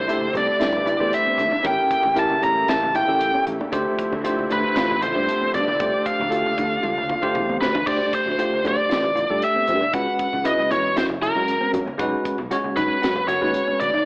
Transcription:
Already playing: D3 G3 C4 D4 E4 C5
0.08 A3 D4 E4 G4 A4, closed hi-hat
0.21 muted fretless electric bass stroke, high conga
0.33 C2 C4, closed hi-hat, low conga
0.37 D5
0.60 G2 E4, snare, closed hi-hat
0.72 high conga
0.86 E4, closed hi-hat, high conga
0.99 E2 A3 D4 G4 C5
1.13 E5, closed hi-hat
1.26 C4, muted fretless electric bass stroke
1.38 E2, closed hi-hat, low conga
1.52 D4, muted fretless electric bass stroke, high conga
1.63 A1 C#3 A3 A#3 C#4 E4 G4 A#4, kick, closed hi-hat
1.67 G5
1.91 muted fretless electric bass stroke, kick, closed hi-hat
2.03 A1, low conga
2.15 C#4 E4 G4 A#4 A5, closed hi-hat
2.30 high conga
2.42 A1 C#4 A#5, closed hi-hat, low conga
2.68 A1 E4 A5, snare, closed hi-hat
2.83 high conga
2.95 E4 G5, closed hi-hat, high conga
3.08 A1 C#4 E4 G4 A4
3.21 closed hi-hat
3.34 C#4, muted fretless electric bass stroke
3.47 A1, closed hi-hat, low conga
3.61 D4, high conga
3.72 D2 D3 F3 A3 C4 D4 E4 G4 C5, kick, closed hi-hat
3.99 muted fretless electric bass stroke, kick, closed hi-hat
4.12 D2, low conga
4.24 A3 D4 F4 G4 C5, closed hi-hat
4.38 muted fretless electric bass stroke, high conga
4.49 D2 D4 B4, closed hi-hat, low conga
4.76 A1 F4 B4, snare, closed hi-hat
4.91 high conga
5.02 F4 C5, closed hi-hat, high conga
5.15 G2 A3 D4 G4 C5
5.29 closed hi-hat
5.41 C4, muted fretless electric bass stroke
5.54 G2 D5, closed hi-hat, low conga
5.68 D4, muted fretless electric bass stroke, high conga
5.79 C2 A3 D4 G4 C5, kick, closed hi-hat
6.06 F5, muted fretless electric bass stroke, kick, closed hi-hat
6.19 D2, low conga
6.29 A3 D4 F4 G4 A4, closed hi-hat
6.46 high conga
6.57 D2 D4, kick, closed hi-hat, low conga
6.83 D2 F4, high tom
6.98 high conga
7.09 F4, kick, high conga
7.22 D2 A3 D4 G4 C5, kick
7.35 E2, mid tom
7.49 C4, high conga
7.61 D2 B4, snare, low conga
7.74 D4, floor tom, high conga
7.86 D2 A3 D4 G4 C5 D5, kick, crash
8.13 C5, muted fretless electric bass stroke, kick, closed hi-hat
8.26 D2, low conga
8.38 A3 D4 F4 G4 C5, closed hi-hat
8.53 muted fretless electric bass stroke, high conga
8.64 D2 D4 D5, closed hi-hat, low conga
8.89 A1 F4, snare, closed hi-hat
9.04 high conga
9.15 F4, closed hi-hat, high conga
9.29 G2 A3 D4 G4 A4
9.42 E5, closed hi-hat
9.56 C4, muted fretless electric bass stroke
9.68 G2, closed hi-hat, low conga
9.81 D4, muted fretless electric bass stroke, high conga
9.93 C#2 G#3 C#4 F#4 B4 F#5, kick, closed hi-hat
10.19 muted fretless electric bass stroke, kick, closed hi-hat
10.33 C#2, low conga
10.44 G#3 C#4 E4 F#4 B4 D#5, closed hi-hat
10.59 high conga
10.70 E2 C#4 C#5, closed hi-hat, low conga
10.96 F#2 E4 C5, snare, closed hi-hat
11.09 high conga
11.22 E4 A#4, closed hi-hat, high conga
11.35 F#2 G#3 C#4 F#4 A#4
11.48 closed hi-hat
11.61 C4, muted fretless electric bass stroke
11.73 F#2, closed hi-hat, low conga
11.86 C#4, high conga
11.98 B1 G#3 C#4 D#4 F#4 B4, kick, closed hi-hat
12.25 muted fretless electric bass stroke, kick, closed hi-hat
12.38 B1, low conga
12.51 G#3 C#4 F#4 C#5, closed hi-hat
12.64 muted fretless electric bass stroke, high conga
12.76 B1 D#4 B4, closed hi-hat, low conga
13.02 F#2 F#4, snare, closed hi-hat
13.16 high conga
13.28 F#4 C#5, closed hi-hat, high conga
13.41 D#2 G#3 C#4 F#4 B4
13.54 closed hi-hat
13.68 C#4, muted fretless electric bass stroke
13.80 D#2 D5, closed hi-hat, low conga
13.94 D#4, high conga

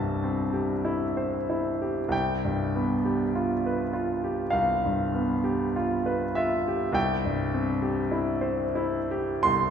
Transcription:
Already playing: C2 G2 E4 G4 C5 A5
0.24 C4
0.53 G4
0.85 E4
1.17 C5
1.50 E4
1.82 G4
2.08 C2 G5
2.45 G2
2.76 B3
3.05 G4
3.35 F4
3.66 B4
3.93 F4
4.24 G4
4.50 C2 F5
4.85 G2
5.15 B3
5.44 G4
5.76 F4
6.06 B4
6.35 F4 E5
6.68 G4
6.92 C2 G5
7.25 G2
7.54 C4
7.82 G4
8.11 E4
8.41 C5
8.75 E4
9.11 G4
9.43 C2 C6

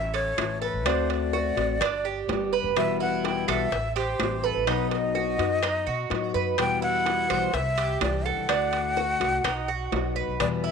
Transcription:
Already playing: A1 E5
0.14 A4 C#5, high timbale
0.37 A1 E3 A3 C#4 E4, high bongo, low bongo, high timbale, claves
0.62 A4 B4, high bongo
0.73 A1
0.85 D2 D3 A3 C4 D4 F#4 C5, high bongo, high timbale, claves
1.09 D5, high bongo, high timbale
1.33 F#4, high bongo
1.57 A1 A3 C4 F#4, high bongo, high timbale
1.80 G1 D4, muted steel-string acoustic guitar stroke, high bongo, high timbale, claves
2.05 G4
2.28 G1 G3 B3 D4 G4, high bongo, low bongo, high timbale, low timbale
2.53 B4, high bongo
2.64 F#1
2.76 E1 B2 E3 G3 B3 F#4 E5, high bongo, high timbale, claves
3.00 E4 F#5, high bongo
3.25 G5, high bongo, high timbale
3.48 B1 E3 G3 B3 F#4 A4 E5, high bongo, high timbale, claves
3.72 A1 E5, muted steel-string acoustic guitar stroke, high bongo
3.96 G4 C5, high timbale
4.19 A1 E3 G3 C4 E4, high bongo, low bongo, high timbale, low timbale, claves
4.43 A4 B4, high bongo
4.55 A1
4.67 B1 B2 F#3 B3 D#4 F#4 B4, high bongo, high timbale, claves
4.91 D#5, high bongo, high timbale
5.15 F#4, high bongo
5.38 F#2 F#3 B3 D#4 F#4, high bongo, high timbale
5.63 D#4, muted steel-string acoustic guitar stroke, high bongo, high timbale, claves
5.87 B2 F#4
6.10 A2 F#3 B3 D#4 F#4, high bongo, low bongo, high timbale
6.34 F#2 B4, high bongo
6.58 E2 B2 E3 G3 B3 F#4 G5, high bongo, high timbale, claves
6.82 E4 F#5, high bongo
7.06 high bongo, high timbale
7.29 B1 E3 G3 B3 F#4 C5, high bongo, high timbale, claves
7.53 C2 E5, high bongo
7.78 G4, high timbale
8.01 C2 E3 G3 D4 E4 D5, high bongo, low bongo, high timbale, low timbale, claves
8.25 A4 F#5, high bongo
8.37 C2
8.49 D2 D3 A3 D4 F#4, high bongo, high timbale, claves
8.73 high bongo, high timbale
8.97 F#4, high bongo
9.20 C2 A3 D4 F#4, high bongo, high timbale
9.44 B1 D#4, muted steel-string acoustic guitar stroke, high bongo, high timbale, claves
9.68 F#4
9.92 B1 F#3 B3 D#4 F#4, high bongo, low bongo, high timbale, low timbale
10.16 B4, high bongo
10.28 B1
10.40 E2 B2 E3 G3 B3 E4 D5, high bongo, high timbale, claves
10.64 E4 E5, high bongo

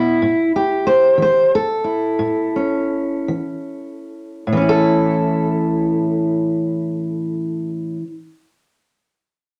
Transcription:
Already playing: B2 A3 E4
0.22 A2
0.56 G4
0.87 C5
1.18 E3
1.22 C5
1.55 A4
1.84 E4
2.19 A2
2.56 C#4
3.28 E3
4.47 A2
4.52 E3
4.57 C#4
4.62 E4
4.69 A4

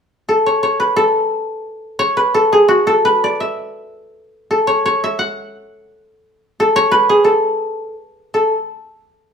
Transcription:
0.29 A4
0.46 C#5
0.63 C#5
0.80 B4
0.96 A4
1.99 C#5
2.17 B4
2.34 A4
2.53 G#4
2.68 F#4
2.87 A4
3.05 B4
3.24 D5
3.40 E5
4.51 A4
4.67 C#5
4.86 C#5
5.04 E5
5.19 F#5
6.60 A4
6.76 C#5
6.92 B4
7.09 G#4
7.24 A4
8.34 A4

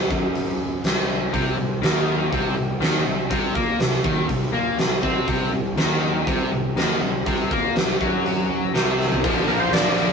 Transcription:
0.10 F#2, kick
0.35 open hi-hat
0.84 C2, snare, open hi-hat
1.33 C2 C3, kick, open hi-hat
1.57 C2 C3
1.81 D#2 D#3, snare, open hi-hat
2.31 C2 C3, kick, open hi-hat
2.56 C2 C3
2.80 D#2 D#3, snare, open hi-hat
3.05 C2 C3
3.30 C2 C3, kick, open hi-hat
3.54 A#2 A#3, kick
3.79 C2 C3, snare, open hi-hat
4.04 D#2 D#3, kick
4.28 C2 C3, kick, open hi-hat
4.53 A#2 A#3
4.78 C2 C3, snare, open hi-hat
5.03 C3 C4, kick
5.28 C2 C3, kick, open hi-hat
5.51 C2 C3
5.76 D#2 D#3, snare, open hi-hat
6.27 C2 C3, kick, open hi-hat
6.51 C2 C3
6.75 D#2 D#3, snare, open hi-hat
7.00 C2 C3
7.26 C2 C3, kick, open hi-hat
7.51 A#2 A#3, kick
7.75 C2 C3, snare, open hi-hat
8.00 F#2 F#3, kick
8.26 open hi-hat
8.74 C2 C3, snare, open hi-hat
9.01 snare
9.12 floor tom
9.23 A#1 A#2 D3 F3 A#3 D4, kick, open hi-hat
9.27 F4
9.47 A#1 F3 A#3 D4 A#4, open hi-hat
9.60 C5
9.72 A#1 A#2 D3 F3 A#3 D4 D5, snare, open hi-hat
9.96 A#1 F3 A#3 D4, open hi-hat

